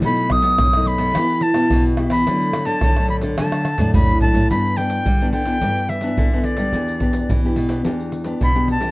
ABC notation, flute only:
X:1
M:4/4
L:1/16
Q:1/4=107
K:G
V:1 name="Flute"
b2 ^d'4 b4 a4 z b- | b3 a3 b2 a4 b2 a2 | b2 g4 g4 e4 d2- | d4 z8 b2 a2 |]